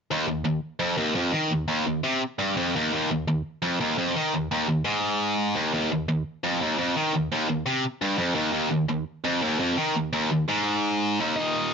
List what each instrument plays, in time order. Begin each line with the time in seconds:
0.11 distorted electric guitar D#2
0.28 distorted electric guitar D#2
0.45 distorted electric guitar D#2
0.80 distorted electric guitar F2
0.97 distorted electric guitar D#2
1.15 distorted electric guitar F2
1.32 distorted electric guitar D#3
1.50 distorted electric guitar D#2
1.68 distorted electric guitar D#2
1.86 distorted electric guitar D#2
2.04 distorted electric guitar C3
2.39 distorted electric guitar G2
2.57 distorted electric guitar F2
2.76 distorted electric guitar D#2
2.93 distorted electric guitar D#2
3.11 distorted electric guitar D#2
3.28 distorted electric guitar D#2
3.62 distorted electric guitar F2
3.80 distorted electric guitar D#2
3.98 distorted electric guitar F2
4.16 distorted electric guitar D#3
4.34 distorted electric guitar D#2
4.51 distorted electric guitar D#2
4.69 distorted electric guitar D#2
4.85 distorted electric guitar G#2
5.55 distorted electric guitar D#2
5.74 distorted electric guitar D#2
5.92 distorted electric guitar D#2
6.09 distorted electric guitar D#2
6.44 distorted electric guitar F2
6.61 distorted electric guitar D#2
6.78 distorted electric guitar F2
6.96 distorted electric guitar D#3
7.13 distorted electric guitar D#2
7.32 distorted electric guitar D#2
7.49 distorted electric guitar D#2
7.66 distorted electric guitar C3
8.02 distorted electric guitar G2
8.18 distorted electric guitar F2
8.35 distorted electric guitar D#2
8.53 distorted electric guitar D#2
8.70 distorted electric guitar D#2
8.89 distorted electric guitar D#2
9.25 distorted electric guitar F2
9.42 distorted electric guitar D#2
9.59 distorted electric guitar F2
9.77 distorted electric guitar D#3
9.95 distorted electric guitar D#2
10.13 distorted electric guitar D#2
10.32 distorted electric guitar D#2
10.49 distorted electric guitar G#2
11.20 distorted electric guitar D#2
11.36 distorted electric guitar D#2 A#2 D#3, lead electric guitar D#4 D#5